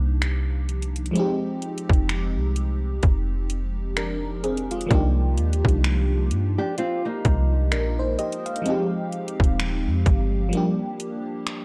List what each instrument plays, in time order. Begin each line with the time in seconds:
Already playing: 808-style bass C2, fm electric piano F3 A#3 D4 D#4 G4
0.22 finger snap, closed hi-hat
0.69 closed hi-hat
0.82 closed hi-hat
0.96 closed hi-hat
1.06 closed hi-hat
1.11 fm electric piano F3 G#3
1.15 fm electric piano C4 D#4, closed hi-hat
1.19 fm electric piano G4
1.62 closed hi-hat
1.78 closed hi-hat
1.90 808-style bass F1, kick, closed hi-hat
2.09 finger snap, closed hi-hat
2.36 808-style bass C2
2.56 closed hi-hat
3.03 808-style bass F1, kick, closed hi-hat
3.50 closed hi-hat
3.97 fm electric piano D4 A#4, finger snap, closed hi-hat
4.44 fm electric piano C4 G#4, closed hi-hat
4.57 closed hi-hat
4.71 fm electric piano G#3 F4, closed hi-hat
4.81 closed hi-hat
4.87 fm electric piano F3 A#3
4.91 808-style bass C2, fm electric piano D4 D#4, kick, closed hi-hat
4.95 fm electric piano G4
5.38 808-style bass D#2, closed hi-hat
5.53 closed hi-hat
5.65 808-style bass C2, kick, closed hi-hat
5.84 finger snap, closed hi-hat
6.31 808-style bass G2, closed hi-hat
6.58 nylon-string guitar D4 G4
6.78 nylon-string guitar C4 F4, closed hi-hat
7.05 nylon-string guitar A#3 D#4
7.25 808-style bass C2, kick, closed hi-hat
7.72 808-style bass A#1, fm electric piano D4 A#4, finger snap, closed hi-hat
7.99 fm electric piano D#4 C5
8.19 fm electric piano G4 D#5, closed hi-hat
8.32 closed hi-hat
8.46 fm electric piano F5, closed hi-hat
8.56 closed hi-hat
8.62 fm electric piano F3 G#3 C4, closed hi-hat
8.68 fm electric piano D#4 G4
9.12 closed hi-hat
9.28 closed hi-hat
9.40 808-style bass D#1, kick, closed hi-hat
9.60 finger snap, closed hi-hat
9.86 808-style bass F2
10.06 808-style bass G1, kick, closed hi-hat
10.49 fm electric piano F3 G3, closed hi-hat
10.53 fm electric piano A#3 D4
10.57 fm electric piano G4
11.00 closed hi-hat
11.47 finger snap, closed hi-hat